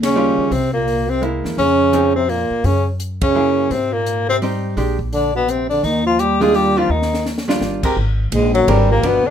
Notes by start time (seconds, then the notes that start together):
Already playing: D#2
0.02 C#3 C#4, snare, ride
0.15 D#3 G3 F4
0.38 muted upright bass stroke
0.51 C2 C3 C4, kick, open hi-hat
0.73 A#2 A#3
0.88 open hi-hat
1.09 C3 C4
1.22 G#3 A#3 E4, closed hi-hat
1.44 E2, snare
1.57 F2 C#3 C#4, kick, open hi-hat
1.93 F3 C4 D#4 G#4, closed hi-hat
2.16 C3 C4
2.29 A#2 A#3, open hi-hat
2.50 muted upright bass stroke
2.64 F#2 C#3 C#4, kick, open hi-hat
3.00 closed hi-hat
3.21 C#3 C#4, kick, ride
3.35 F#3 A#3 E4 G#4
3.70 G#2 C3 C4, kick, open hi-hat
3.93 A#2 A#3
4.06 closed hi-hat
4.28 C3 C4
4.42 G3 C4 D#4, open hi-hat
4.77 A#1 G#3 D4 G4, kick, open hi-hat
4.99 kick
5.13 D3 D4, open hi-hat
5.35 B2 B3
5.48 C3 C4, closed hi-hat
5.69 D3 D4, open hi-hat
5.83 D#2 D#3 D#4, kick, open hi-hat
6.06 F3 F4
6.19 G3 G4, closed hi-hat
6.41 D#3 G3 G#3 D4 F4 G#4, open hi-hat
6.54 G3 G4, open hi-hat
6.76 D#3 F3 G3 D4 F4
6.89 D#2 D#3 D#4
7.02 snare
7.14 snare
7.26 snare
7.38 snare
7.48 D#3 G3 D4 F4, snare
7.61 G1, snare
7.83 G#3 C4 G4 A#4, kick, crash
7.97 G#1, kick
8.32 A#1 G#2 G#3, kick, hi-hat pedal, ride
8.54 F#2 F#3, ride
8.68 G#1 G2 G3 G#3 C4 G4 A#4, kick, ride
8.90 A#2 A#3
9.03 G1 B2 F3 B3 D4, kick, ride
9.25 D3 D4, muted upright bass stroke